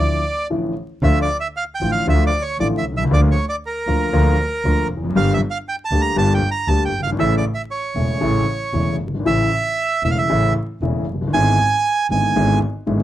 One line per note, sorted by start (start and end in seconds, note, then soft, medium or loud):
0.00 0.20 D2 medium
0.00 0.20 D2 soft
0.00 0.20 D3 soft
0.00 0.20 F3 soft
0.00 0.20 A3 soft
0.00 0.20 E4 soft
0.00 0.47 D5 medium
0.50 0.72 A1 medium
0.50 0.72 A2 soft
0.50 0.72 D3 soft
0.50 0.72 F3 soft
0.50 0.72 A3 soft
0.50 0.72 E4 soft
1.02 1.24 D2 medium
1.02 1.25 D2 medium
1.02 1.25 D3 medium
1.02 1.24 F3 medium
1.02 1.24 A3 medium
1.02 1.25 F4 medium
1.02 1.19 E5 medium
1.22 1.37 D5 medium
1.40 1.47 E5 medium
1.57 1.64 F5 medium
1.75 1.91 G5 medium
1.81 2.02 A1 medium
1.81 2.03 A1 medium
1.81 2.03 A2 soft
1.81 2.03 D3 soft
1.81 2.03 F3 soft
1.81 2.03 A3 soft
1.81 2.03 F4 soft
1.92 2.07 F5 medium
2.07 2.28 D2 medium
2.07 2.29 D2 medium
2.07 2.29 D3 medium
2.07 2.28 F3 medium
2.07 2.29 A3 medium
2.07 2.29 F4 medium
2.07 2.24 E5 medium
2.27 2.43 D5 medium
2.42 2.58 C#5 medium
2.58 2.80 A1 medium
2.58 2.81 A1 medium
2.58 2.81 A2 medium
2.58 2.81 D3 soft
2.58 2.81 F3 soft
2.58 2.81 A3 soft
2.58 2.81 F4 soft
2.58 2.67 D5 medium
2.78 2.85 E5 medium
2.84 3.09 C2 medium
2.92 2.98 B1 soft
2.97 3.04 C2 medium
2.97 3.04 E5 medium
3.04 3.10 C#2 medium
3.10 3.32 D2 medium
3.10 3.32 D3 medium
3.10 3.32 F3 medium
3.10 3.33 A#3 medium
3.10 3.32 F4 medium
3.10 3.20 D5 medium
3.31 3.45 C#5 medium
3.49 3.56 D5 medium
3.66 4.88 A#4 medium
3.87 4.08 D2 medium
3.87 4.09 D2 medium
3.87 4.08 D3 medium
3.87 4.09 F3 soft
3.87 4.09 A#3 soft
3.87 4.09 F4 soft
4.13 4.34 D2 loud
4.13 4.34 D2 medium
4.13 4.34 D3 medium
4.13 4.34 F3 medium
4.13 4.34 A#3 medium
4.13 4.34 F4 medium
4.64 4.86 D2 medium
4.64 4.86 D3 medium
4.64 4.86 F3 soft
4.64 4.86 A#3 soft
4.64 4.86 F4 medium
4.90 5.14 F1 medium
4.97 5.03 E2 soft
5.04 5.09 F2 medium
5.09 5.15 F#2 medium
5.15 5.36 G1 loud
5.15 5.37 G1 medium
5.15 5.37 G2 medium
5.15 5.37 D3 medium
5.15 5.37 G3 medium
5.15 5.37 A#3 medium
5.15 5.37 G4 medium
5.15 5.33 F5 medium
5.33 5.41 E5 medium
5.51 5.58 F5 medium
5.69 5.76 G5 medium
5.85 6.01 A5 medium
5.91 6.13 D2 medium
5.91 6.13 D3 medium
5.91 6.13 G3 soft
5.91 6.13 A#3 soft
5.91 6.13 G4 soft
6.02 6.17 A#5 loud
6.16 6.38 G1 medium
6.16 6.38 G2 medium
6.16 6.38 D3 medium
6.16 6.38 G3 medium
6.16 6.38 A#3 medium
6.16 6.38 G4 medium
6.16 6.33 A5 loud
6.34 6.50 G5 medium
6.51 6.69 A#5 medium
6.67 6.89 D2 medium
6.67 6.90 D3 medium
6.67 6.90 G3 soft
6.67 6.90 A#3 soft
6.67 6.90 G4 medium
6.67 6.84 A5 medium
6.85 7.01 G5 medium
6.93 7.18 G1 medium
6.99 7.06 F#1 soft
6.99 7.10 F5 medium
7.06 7.13 G1 medium
7.12 7.19 G#1 medium
7.19 7.40 A1 medium
7.19 7.41 A1 medium
7.19 7.41 A2 medium
7.19 7.41 C#3 medium
7.19 7.40 E3 medium
7.19 7.40 A3 medium
7.19 7.41 E4 medium
7.19 7.35 E5 medium
7.37 7.45 D5 medium
7.54 7.62 E5 medium
7.71 8.96 C#5 medium
7.96 8.18 E1 medium
7.96 8.18 E1 soft
7.96 8.18 E2 soft
7.96 8.18 C#3 soft
7.96 8.18 E3 soft
7.96 8.18 A3 soft
7.96 8.18 E4 soft
8.21 8.43 A1 medium
8.21 8.44 A1 medium
8.21 8.43 A2 medium
8.21 8.43 C#3 medium
8.21 8.43 E3 medium
8.21 8.43 A3 medium
8.21 8.43 E4 medium
8.73 8.96 E1 soft
8.73 8.96 E1 medium
8.73 8.96 E2 medium
8.73 8.95 C#3 soft
8.73 8.96 E3 soft
8.73 8.96 A3 soft
8.73 8.96 E4 soft
8.99 9.25 G1 soft
9.07 9.13 F#1 soft
9.14 9.20 G1 medium
9.19 9.26 G#1 medium
9.25 9.48 A1 medium
9.25 9.48 A2 medium
9.25 9.47 C#3 medium
9.25 9.48 E3 medium
9.25 9.48 A3 medium
9.25 9.48 E4 medium
9.25 10.03 E5 loud
10.03 10.25 E1 medium
10.03 10.26 E1 soft
10.03 10.26 E2 soft
10.03 10.26 C#3 soft
10.03 10.26 E3 soft
10.03 10.26 A3 soft
10.03 10.26 E4 soft
10.03 10.11 E5 medium
10.11 10.18 F5 medium
10.18 10.53 E5 medium
10.29 10.51 A1 medium
10.29 10.51 A2 medium
10.29 10.51 C#3 medium
10.29 10.52 E3 medium
10.29 10.52 A3 medium
10.29 10.52 E4 medium
10.81 11.03 E1 medium
10.81 11.04 E2 medium
10.81 11.04 C#3 soft
10.81 11.03 E3 soft
10.81 11.03 A3 soft
10.81 11.04 E4 medium
11.07 11.32 F#1 medium
11.14 11.21 F1 soft
11.21 11.27 F#1 medium
11.27 11.33 G1 medium
11.33 11.55 G#1 medium
11.33 11.55 G#2 medium
11.33 11.55 D3 medium
11.33 11.55 G#3 medium
11.33 11.55 B3 medium
11.33 11.55 E4 medium
11.33 12.07 G#5 loud
12.10 12.32 G#1 medium
12.10 12.32 G#1 soft
12.10 12.32 G#2 soft
12.10 12.32 D3 soft
12.10 12.32 G#3 soft
12.10 12.32 B3 soft
12.10 12.33 E4 soft
12.10 12.59 G#5 medium
12.35 12.58 G#1 medium
12.35 12.58 G#2 medium
12.35 12.58 D3 medium
12.35 12.58 G#3 medium
12.35 12.58 B3 medium
12.35 12.58 E4 medium
12.86 13.03 G#1 medium
12.86 13.03 G#2 medium
12.86 13.03 D3 soft
12.86 13.03 G#3 soft
12.86 13.03 B3 soft
12.86 13.03 E4 medium